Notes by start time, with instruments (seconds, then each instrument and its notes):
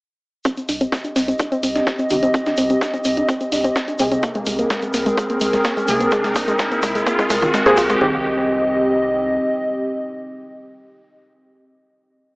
0.45 synth arpeggio sound C4, analog synth pad C4 G4 D#5, kick, closed hi-hat, riser, shaker
0.57 synth arpeggio sound C4, closed hi-hat, shaker
0.69 analog synth bass C2, synth arpeggio sound D4, closed hi-hat, open hi-hat, shaker
0.81 synth arpeggio sound C4, closed hi-hat, shaker
0.92 synth arpeggio sound C4, kick, snare, closed hi-hat, shaker
1.04 synth arpeggio sound D4, closed hi-hat, shaker
1.16 analog synth bass C2, synth arpeggio sound C4, snare, closed hi-hat, open hi-hat, shaker
1.28 synth arpeggio sound C4, closed hi-hat, shaker
1.39 synth arpeggio sound D4, kick, closed hi-hat, shaker
1.52 synth arpeggio sound C4, closed hi-hat, shaker
1.63 analog synth bass C2, synth arpeggio sound C4, closed hi-hat, open hi-hat, shaker
1.75 synth arpeggio sound D4, snare, closed hi-hat, shaker
1.87 synth arpeggio sound C4, kick, snare, closed hi-hat, shaker
1.99 synth arpeggio sound C4, closed hi-hat, shaker
2.10 analog synth bass C2, synth stab D#3 C4 G4, synth arpeggio sound D4, closed hi-hat, open hi-hat, shaker
2.23 synth arpeggio sound C4, closed hi-hat, shaker
2.34 synth arpeggio sound C4, kick, closed hi-hat, shaker
2.46 synth arpeggio sound D4, snare, closed hi-hat, shaker
2.57 analog synth bass C2, synth arpeggio sound C4, closed hi-hat, open hi-hat, shaker
2.70 synth arpeggio sound C4, closed hi-hat, shaker
2.81 synth arpeggio sound D4, kick, snare, closed hi-hat, shaker
2.94 synth arpeggio sound C4, closed hi-hat, shaker
3.04 analog synth bass C2, synth arpeggio sound C4, closed hi-hat, open hi-hat, shaker
3.16 synth arpeggio sound D4, closed hi-hat, shaker
3.29 synth arpeggio sound C4, kick, closed hi-hat, shaker
3.41 synth arpeggio sound C4, closed hi-hat, shaker
3.52 analog synth bass C2, synth arpeggio sound D4, open hi-hat, shaker
3.64 synth arpeggio sound C4, closed hi-hat, shaker
3.76 synth arpeggio sound C4, kick, snare, closed hi-hat, shaker
3.88 synth arpeggio sound D4, closed hi-hat, shaker
3.99 analog synth bass C2, synth stab C3 A#3 G#4, synth arpeggio sound C4, closed hi-hat, open hi-hat, shaker
4.12 synth arpeggio sound C4, closed hi-hat, shaker
4.23 synth arpeggio sound A#3, analog synth pad C4 G#4 A#4, kick, closed hi-hat, shaker
4.35 synth arpeggio sound G#3, closed hi-hat, shaker
4.46 analog synth bass C2, synth arpeggio sound G#3, closed hi-hat, open hi-hat, shaker
4.59 synth arpeggio sound A#3, closed hi-hat, shaker
4.70 synth arpeggio sound G#3, kick, snare, closed hi-hat, shaker
4.82 synth arpeggio sound G#3, closed hi-hat, shaker
4.94 analog synth bass C2, synth arpeggio sound A#3, snare, closed hi-hat, open hi-hat, shaker
5.06 synth arpeggio sound G#3, closed hi-hat, shaker
5.17 synth arpeggio sound G#3, kick, closed hi-hat, shaker
5.29 synth arpeggio sound A#3, closed hi-hat, shaker
5.41 analog synth bass C2, synth arpeggio sound G#3, closed hi-hat, open hi-hat, shaker
5.53 synth arpeggio sound G#3, snare, closed hi-hat, shaker
5.64 synth arpeggio sound A#3, kick, snare, closed hi-hat, shaker
5.77 synth arpeggio sound G#3, closed hi-hat, shaker
5.88 analog synth bass C2, synth stab C3 A#3 G#4, synth arpeggio sound G#3, closed hi-hat, open hi-hat, shaker
6.00 synth arpeggio sound A#3, closed hi-hat, shaker
6.11 synth arpeggio sound G#3, kick, closed hi-hat, shaker
6.24 synth arpeggio sound G#3, snare, closed hi-hat, shaker
6.35 analog synth bass C2, synth arpeggio sound A#3, kick, closed hi-hat, open hi-hat, shaker
6.48 synth arpeggio sound G#3, closed hi-hat, shaker
6.59 synth arpeggio sound G#3, kick, snare, closed hi-hat, shaker
6.71 synth arpeggio sound A#3, closed hi-hat, shaker
6.83 analog synth bass C2, synth arpeggio sound G#3, kick, closed hi-hat, open hi-hat, shaker
6.95 synth arpeggio sound G#3, closed hi-hat, shaker
7.07 synth arpeggio sound A#3, kick, closed hi-hat, shaker
7.19 synth arpeggio sound G#3, kick, closed hi-hat, shaker
7.30 analog synth bass C2, synth arpeggio sound G#3, kick, open hi-hat, shaker
7.42 synth arpeggio sound D#3, kick, closed hi-hat, shaker
7.54 synth arpeggio sound G#3, kick, snare, closed hi-hat, shaker
7.66 synth stab C3 A#3 G#4, synth arpeggio sound C5, kick, closed hi-hat, shaker
7.77 analog synth bass C2, synth arpeggio sound F4, kick, closed hi-hat, open hi-hat, shaker
7.89 synth arpeggio sound G#3, kick, closed hi-hat, shaker
8.01 analog synth bass C2, synth stab D#3 C4 G4, synth arpeggio sound C4, analog synth pad C4 G4 D#5, kick, floor tom